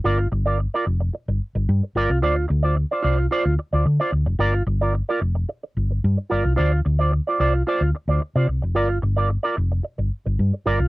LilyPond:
<<
  \new Staff \with { instrumentName = "Clean electric guitar" } { \time 4/4 \key g \minor \tempo 4 = 110 <f' bes' d''>8 r16 <f' bes' d''>16 r16 <f' bes' d''>8 r4. r16 <f' bes' d''>8 | <f' c'' d''>8 r16 <f' c'' d''>16 r16 <f' c'' d''>16 <f' c'' d''>8 <f' c'' d''>8 r16 <f' c'' d''>16 r16 <f' c'' d''>8 r16 | <f' bes' d''>8 r16 <f' bes' d''>16 r16 <f' bes' d''>8 r4. r16 <f' bes' d''>8 | <f' c'' d''>8 r16 <f' c'' d''>16 r16 <f' c'' d''>16 <f' c'' d''>8 <f' c'' d''>8 r16 <f' c'' d''>16 r16 <f' c'' d''>8 r16 |
<f' bes' d''>8 r16 <f' bes' d''>16 r16 <f' bes' d''>8 r4. r16 <f' bes' d''>8 | }
  \new Staff \with { instrumentName = "Fingered electric bass" } { \clef bass \time 4/4 \key g \minor g,,8 g,,8. r16 f,,8 r16 g,,16 r16 g,,16 g,16 r16 g,,16 c,16 | d,8 d,8. r16 c,8 r16 d,16 r16 d,16 d16 r16 d,16 f,,16 | g,,8 g,,8. r16 f,,8 r8 g,,8 g,16 r16 g,,16 c,16 | d,8 d,8. r16 c,8 r16 d,16 r16 d,16 r16 c16 c,16 f,,16 |
g,,8 g,,8. r16 f,,8 r16 g,,16 r16 g,,16 g,16 r16 g,,16 c,16 | }
>>